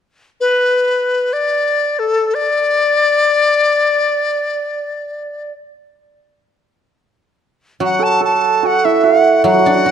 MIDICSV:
0, 0, Header, 1, 4, 480
1, 0, Start_track
1, 0, Tempo, 500000
1, 9516, End_track
2, 0, Start_track
2, 0, Title_t, "Dizi"
2, 0, Program_c, 0, 73
2, 389, Note_on_c, 0, 71, 74
2, 1277, Note_on_c, 0, 74, 70
2, 1292, Note_off_c, 0, 71, 0
2, 1911, Note_on_c, 0, 69, 67
2, 1926, Note_off_c, 0, 74, 0
2, 2252, Note_on_c, 0, 74, 87
2, 2266, Note_off_c, 0, 69, 0
2, 5301, Note_off_c, 0, 74, 0
2, 7528, Note_on_c, 0, 78, 72
2, 7710, Note_on_c, 0, 81, 77
2, 7724, Note_off_c, 0, 78, 0
2, 7904, Note_off_c, 0, 81, 0
2, 7916, Note_on_c, 0, 81, 81
2, 8315, Note_on_c, 0, 78, 71
2, 8330, Note_off_c, 0, 81, 0
2, 8494, Note_on_c, 0, 76, 60
2, 8508, Note_off_c, 0, 78, 0
2, 8681, Note_on_c, 0, 78, 69
2, 8696, Note_off_c, 0, 76, 0
2, 9073, Note_off_c, 0, 78, 0
2, 9079, Note_on_c, 0, 78, 76
2, 9516, Note_off_c, 0, 78, 0
2, 9516, End_track
3, 0, Start_track
3, 0, Title_t, "Hammered dulcimer"
3, 0, Program_c, 1, 15
3, 7490, Note_on_c, 1, 66, 62
3, 7671, Note_on_c, 1, 69, 61
3, 7874, Note_off_c, 1, 69, 0
3, 7878, Note_on_c, 1, 69, 62
3, 8281, Note_off_c, 1, 66, 0
3, 8285, Note_on_c, 1, 66, 63
3, 8495, Note_on_c, 1, 64, 55
3, 8670, Note_off_c, 1, 66, 0
3, 8674, Note_on_c, 1, 66, 58
3, 9060, Note_off_c, 1, 66, 0
3, 9064, Note_on_c, 1, 66, 57
3, 9137, Note_off_c, 1, 66, 0
3, 9141, Note_on_c, 1, 66, 42
3, 9202, Note_off_c, 1, 66, 0
3, 9206, Note_on_c, 1, 66, 46
3, 9284, Note_off_c, 1, 66, 0
3, 9288, Note_on_c, 1, 66, 39
3, 9344, Note_off_c, 1, 66, 0
3, 9348, Note_on_c, 1, 66, 41
3, 9440, Note_off_c, 1, 66, 0
3, 9444, Note_on_c, 1, 66, 38
3, 9494, Note_off_c, 1, 66, 0
3, 9516, Note_off_c, 1, 64, 0
3, 9516, Note_off_c, 1, 69, 0
3, 9516, End_track
4, 0, Start_track
4, 0, Title_t, "Guzheng"
4, 0, Program_c, 2, 107
4, 7490, Note_on_c, 2, 54, 42
4, 9051, Note_off_c, 2, 54, 0
4, 9062, Note_on_c, 2, 54, 48
4, 9274, Note_on_c, 2, 62, 40
4, 9465, Note_on_c, 2, 66, 41
4, 9516, Note_off_c, 2, 54, 0
4, 9516, Note_off_c, 2, 62, 0
4, 9516, Note_off_c, 2, 66, 0
4, 9516, End_track
0, 0, End_of_file